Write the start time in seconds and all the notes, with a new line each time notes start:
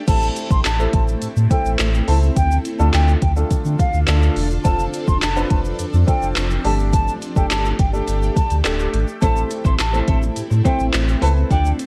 0.08 A1 A3 C4 E4 A4 A5, kick, closed hi-hat, crash, shaker
0.22 shaker
0.36 closed hi-hat, shaker
0.50 A1 C6, kick, shaker
0.64 A1 A5, snare, clap, closed hi-hat, shaker
0.79 A3 C4 E4 A4, shaker
0.93 A1 A5, kick, closed hi-hat
1.08 shaker
1.22 A2, closed hi-hat, shaker
1.37 A2, shaker
1.51 A3 C4 E4 A4 G5, kick, closed hi-hat, shaker
1.65 A1, shaker
1.78 A1, snare, clap, closed hi-hat, shaker
1.94 shaker
2.08 C#2 A3 C4 E4 C5 A5, open hi-hat
2.22 shaker
2.36 D2 D3 D4 F4 A4 G5, kick, closed hi-hat, shaker
2.51 shaker
2.65 closed hi-hat, shaker
2.79 D2 A3 D4 F4 A4 A5, shaker
2.93 D2 G5, snare, clap, closed hi-hat, shaker
3.08 shaker
3.22 D2 G5, kick, closed hi-hat
3.36 A3 D4 F4 A4, shaker
3.51 D3, kick, closed hi-hat, shaker
3.65 D3, shaker
3.79 F5, kick, closed hi-hat, shaker
3.94 D2, shaker
4.07 D2 A3 D4 F4 A4, snare, clap, closed hi-hat, shaker
4.22 shaker
4.36 E1, open hi-hat
4.51 shaker
4.65 F1 F3 C4 D4 F4 A4 A5, kick, closed hi-hat, shaker
4.79 shaker
4.93 closed hi-hat, shaker
5.07 F1 C6, kick, shaker
5.21 F1 A5, snare, clap, closed hi-hat, shaker
5.36 C4 D4 F4 B4, shaker
5.50 F1 A5, kick, closed hi-hat
5.65 shaker
5.79 F2, closed hi-hat, shaker
5.93 F2, shaker
6.07 C4 D4 F4 A4 G5, kick, closed hi-hat, shaker
6.22 F1, shaker
6.35 F1, snare, clap, closed hi-hat, shaker
6.51 shaker
6.65 G1 A3 D4 G4 A4 A5, open hi-hat
6.79 shaker
6.93 A5, kick, closed hi-hat, shaker
7.08 shaker
7.22 closed hi-hat, shaker
7.36 G1 A3 D4 G4 A4 G5, kick, shaker
7.50 G1 A5, snare, clap, closed hi-hat, shaker
7.65 shaker
7.79 G1 G5, kick, closed hi-hat
7.93 A3 D4 G4 A4, shaker
8.08 G1, closed hi-hat, shaker
8.22 shaker
8.36 D2 A5, kick, closed hi-hat, shaker
8.50 D2, closed hi-hat, shaker
8.64 D1 A3 D4 G4 A4, snare, clap, closed hi-hat, shaker
8.79 shaker
8.94 G#1, closed hi-hat
9.08 shaker
9.22 A1 A3 C4 E4 A4 C5 A5, kick, closed hi-hat, shaker
9.36 shaker
9.50 muted clean electric guitar stroke, closed hi-hat, shaker
9.65 A1 C4 E4 A4 C5 C6, kick, shaker
9.79 A1 A5, muted clean electric guitar stroke, snare, clap, closed hi-hat, shaker
9.93 A3 C4 E4 A4 C5, shaker
10.07 A1 C4 E4 A4 C5 A5, kick, closed hi-hat
10.22 muted clean electric guitar stroke, shaker
10.36 A2, closed hi-hat, shaker
10.51 A2, muted clean electric guitar stroke, shaker
10.65 A3 C4 E4 A4 C5 G5, kick, closed hi-hat, shaker
10.79 A1, muted clean electric guitar stroke, shaker
10.93 A1, muted clean electric guitar stroke, snare, clap, closed hi-hat, shaker
11.08 muted clean electric guitar stroke, shaker
11.21 C#2 A3 C4 E4 A4 B4 C5 A5, open hi-hat
11.36 C4 E4 A4 C5, shaker
11.50 D2 D3 D4 F4 A4 D5 G5, kick, closed hi-hat, shaker
11.65 shaker
11.79 muted clean electric guitar stroke, closed hi-hat, shaker